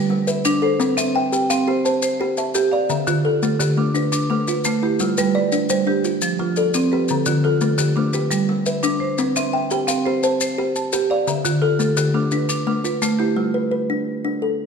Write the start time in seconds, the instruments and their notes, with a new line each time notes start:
Already playing: marimba G3 B4, kalimba G4
0.10 kalimba G3
0.27 kalimba B4, marimba E5, maracas
0.45 marimba D4, kalimba D4, maracas
0.62 kalimba A4, marimba C5
0.80 kalimba C4, marimba B4, maracas
0.97 marimba C4, kalimba E5, maracas
1.15 marimba E5, kalimba G5
1.32 kalimba G4, marimba G5, maracas
1.50 marimba C4, kalimba F5, maracas
1.68 kalimba G4, marimba C5
1.85 kalimba C5, marimba A5, maracas
2.02 marimba C5, maracas
2.20 kalimba G4, marimba C5
2.37 kalimba E5, marimba A5, maracas
2.55 marimba G4, kalimba G4, maracas
2.72 kalimba D5, marimba F5
2.90 kalimba D3, marimba E5, maracas
3.07 marimba D3, kalimba F4, maracas
3.25 marimba F4, kalimba A4
3.43 kalimba A3, marimba A4, maracas
3.60 marimba D3, kalimba G4, maracas
3.77 kalimba A3, marimba D4
3.94 kalimba D4, marimba B4, maracas
4.12 marimba D4, maracas
4.30 kalimba A3, marimba D4
4.47 kalimba F4, marimba B4, maracas
4.64 marimba A3, kalimba A3, maracas
4.83 kalimba E4, marimba G4
4.99 kalimba G3, marimba F4, maracas
5.17 marimba G3, kalimba B4, maracas
5.35 marimba B4, kalimba D5
5.52 kalimba D4, maracas
5.69 marimba G3, kalimba C5, maracas
5.87 kalimba D4, marimba G4
6.04 kalimba F4, maracas
6.22 marimba F3, maracas
6.39 kalimba F3, marimba F4
6.56 kalimba A4, marimba D5, maracas
6.74 marimba C4, kalimba C4, maracas
6.92 kalimba G4, marimba B4
7.08 kalimba D3, marimba A4, maracas
7.26 marimba D3, kalimba F4, maracas
7.44 marimba F4, kalimba A4
7.61 kalimba A3, marimba A4, maracas
7.78 marimba D3, kalimba G4, maracas
7.96 kalimba A3, marimba D4
8.13 kalimba G4, marimba B4, maracas
8.31 marimba G3, maracas
8.49 kalimba G3
8.66 kalimba B4, marimba E5, maracas
8.83 marimba D4, kalimba D4, maracas
9.00 marimba C5
9.18 kalimba C4, marimba B4, maracas
9.36 marimba C4, kalimba E5, maracas
9.53 marimba E5, kalimba G5
9.70 kalimba G4, marimba G5, maracas
9.87 marimba C4, kalimba F5, maracas
10.06 kalimba G4, marimba C5
10.23 kalimba C5, marimba A5, maracas
10.41 marimba C5, maracas
10.58 kalimba G4, marimba C5
10.76 marimba A5, maracas
10.93 marimba G4, kalimba G4, maracas
11.10 kalimba D5, marimba F5
11.27 kalimba D3, marimba E5, maracas
11.45 marimba D3, kalimba F4, maracas
11.62 marimba F4, kalimba A4
11.79 kalimba A3, marimba A4, maracas
11.97 marimba D3, kalimba G4, maracas
12.14 kalimba A3, marimba D4
12.31 kalimba D4, marimba B4, maracas
12.49 marimba D4, maracas
12.67 kalimba A3, marimba D4
12.84 kalimba F4, marimba B4, maracas
13.02 kalimba A3, marimba A3, maracas
13.19 kalimba E4, marimba G4
13.36 kalimba G3, marimba F4
13.54 kalimba B4
13.71 kalimba B4
13.90 kalimba D4
14.25 kalimba D4
14.42 kalimba A4